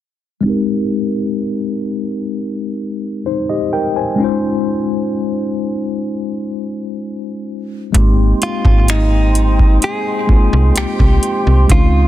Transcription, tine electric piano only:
0.41 G#3 C4
0.45 D#4 G4
0.49 A#4
3.26 D#4 C5
3.49 G4 D#5
3.73 A#4 G5
3.96 C5 G#5
4.15 G#3 C#4
4.20 D#4 F4
4.24 C5
7.92 G#3 A#3 C4 D#4
7.97 G4
10.27 G#3 A#3 C4 D#4
10.31 F4
11.68 G#3 C4 C#4 D#4
11.72 E4
11.79 F4

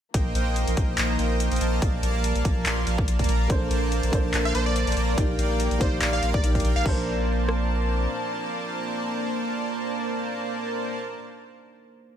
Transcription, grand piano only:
3.48 A#3 D4 A4
3.52 C5
4.11 A#3 D4 A4 C5
5.16 A#3 D#4 G4 D5
5.79 A#3 D#4 G4
5.83 D5
6.43 A#3 D#4 G4 D5
6.83 A#3 D4 A5
6.88 C5

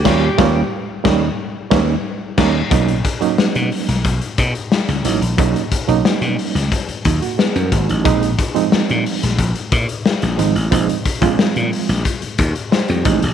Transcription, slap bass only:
0.05 D#2
0.39 D#2
1.05 D#2
1.72 D#2
2.38 D#2
2.72 B1
3.22 muted slap bass stroke
3.39 muted slap bass stroke
3.56 B2
3.88 B1
4.05 B1
4.39 B2
4.88 C#2
5.05 A1
5.21 A#1
5.39 B1
5.88 B1
6.21 B2
6.55 C#2
6.88 muted slap bass stroke
7.05 D#2
7.56 F#2
7.72 G#1
7.90 A1
8.06 A#1
8.56 muted slap bass stroke
8.73 muted slap bass stroke
8.90 A#2
9.23 A#1
9.39 A#1
9.72 A#2
10.23 A#1
10.39 G#1
10.55 A1
10.72 A#1
11.22 A#1
11.40 muted slap bass stroke
11.56 A#2
11.89 A#1
12.23 muted slap bass stroke
12.39 D#2
12.89 F2
13.06 A1
13.23 A#1

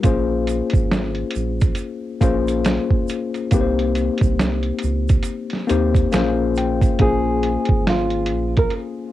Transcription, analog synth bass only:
0.05 A#1
0.74 G#1
1.36 A#1
2.22 A#1
3.52 C2
4.22 C2
4.84 C#2
5.70 D#2
6.14 A#1
7.00 A#1
7.70 G#1
8.31 A#1

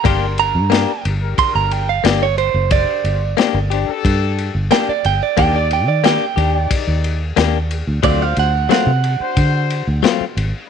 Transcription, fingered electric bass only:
0.05 G1
0.55 G2
1.05 G1
1.38 muted fingered electric bass stroke
1.55 G1
2.04 G1
2.54 F#1
3.04 G1
3.54 G1
3.89 muted fingered electric bass stroke
4.05 G2
4.55 G1
4.88 muted fingered electric bass stroke
5.05 G1
5.38 D#2
5.87 D#3
6.37 D#2
6.87 D#2
7.37 D#2
7.87 D2
8.03 D2
8.37 D2
8.86 C3
9.20 muted fingered electric bass stroke
9.37 D3
9.87 D2
10.20 muted fingered electric bass stroke
10.37 G#1

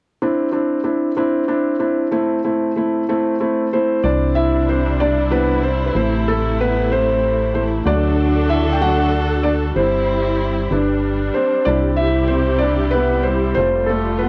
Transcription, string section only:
4.03 C3 G3 D4 E4
5.94 C3 A3
7.84 D3 D4 F#4 A4
9.77 G3 C4 E4
10.72 G3 D4
11.68 C3 G3 E4 G4
13.58 A3 F4

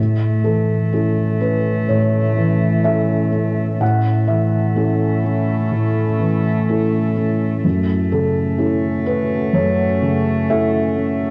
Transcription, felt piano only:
Already playing: A2
0.44 E3 A4
0.92 C#4 E4 A4
1.40 C#4 B4
1.88 A2 C#5
2.37 E3
2.84 C#4 E4 A4 E5
3.32 C#4
3.80 A2 F#5
4.28 E3 E5
4.76 C#4 E4 A4
5.24 C#4
5.71 A2
6.20 E3
6.69 C#4 E4 A4
7.17 C#4
7.65 F#2
8.12 C#3 A4
8.58 C#4 E4 A4
9.06 C#4 B4
9.53 F#2 C#5
10.02 C#3
10.49 C#4 E4 A4 E5
10.97 C#4

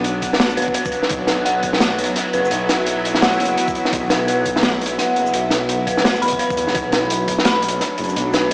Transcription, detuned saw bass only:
Already playing: B1
0.57 F#1
1.11 B1
2.34 F#1
2.51 B1
3.40 F#1
3.93 B1
5.16 F#1
5.34 B1
6.22 F#1
6.58 E2
6.68 F#1
6.75 B1
7.99 F#1
8.16 B1

